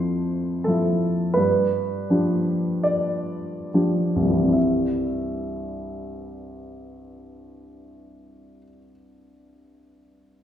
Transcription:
Already playing: F2 F3 E4 A4 C5
0.64 F3 E4 A4
1.34 G2 B4
2.10 F3 D4 G4
2.83 D5
3.74 F3 D4 G4
4.16 C2
4.22 G2
4.29 E3
4.36 G3
4.42 C4
4.49 E4 E5

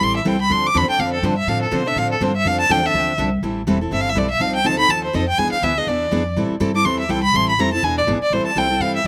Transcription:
0.00 A1 E3 G3 C4 E4 A4 C6
0.17 E5
0.25 C2 E3 G3 C4 E4 A4 G5
0.42 B5
0.49 D2 D3 F3 C4 D4 A4 C6
0.66 D6
0.74 E2 D3 F3 C4 D4 A4 B5
0.88 C4 D4 A4 G5, muted upright bass stroke
0.99 F2 D3 F3 C4 D4 A4 F5
1.13 A4
1.22 G2 D3 F3 C4 D4 A4 C5
1.38 E5
1.47 A2 D3 F3 C4 D4 A4 F5
1.62 A4
1.71 B2 D3 F3 C4 D4 A4 C5
1.86 C4 D4 A4 E5
1.96 A2 D3 F3 C4 D4 A4 F5
2.12 A4
2.21 G2 D3 F3 C4 D4 A4 C5
2.36 E5
2.45 F2 D3 F3 C4 D4 A4 F5
2.61 A5
2.69 E2 D3 F3 C4 D4 A4 G5
2.83 C4 D4 A4 E5
2.93 D2 D3 F3 C4 D4 A4
3.18 C2 D3 F3 C4 D4 A4
3.43 A1 E3 G3 C4 E4 A4
3.67 E1 E3 G3 C4 E4 A4
3.81 C4 E4 A4
3.91 G1 E3 G3 C4 E4 A4 E5
4.01 F5
4.09 E5
4.15 B1 E3 G3 C4 E4 A4 D5
4.31 E5
4.40 C2 F3 C4 D#4 A4 F5
4.56 G5
4.64 D2 F3 C4 D#4 A4 A5
4.77 C4 D#4 A4 B5
4.88 D#2 F3 C4 D#4 A4 A5
5.04 C5
5.13 F2 F3 C4 D#4 A4 D#5
5.29 G5
5.38 E2 E3 B3 D4 G#4 G#5
5.52 F5, muted upright bass stroke
5.62 D2 E3 B3 D4 G#4 E5
5.78 B3 D4 G#4 D#5
5.87 E2 E3 B3 D4 G#4 D5
6.11 F2 E3 B3 D4 G#4
6.36 A2 E3 G3 C4 E4 A4
6.50 muted upright bass stroke
6.60 G2 E3 G3 C4 E4 A4
6.74 C4 E4 A4 D6
6.85 E2 E3 G3 C4 E4 A4 C6
7.00 E5
7.09 C2 E3 G3 C4 E4 A4 G5
7.24 B5
7.34 A1 E3 G3 C4 E4 A4 C6
7.49 B5
7.58 F1 E3 G3 C4 E4 A4 A#5
7.72 C4 E4 A4 A5
7.83 E1 E3 B3 D4 G#4 G#5
7.98 D5
8.07 G#1 E3 B3 D4 G#4
8.20 D5, muted upright bass stroke
8.30 A1 E3 G3 C4 E4 A4 C5
8.45 A5, muted upright bass stroke
8.55 C2 E3 G3 C4 E4 A4 G5
8.70 C4 E4 A4
8.80 G2 E3 G3 C4 E4 A4 F5
8.96 E5
9.04 C3

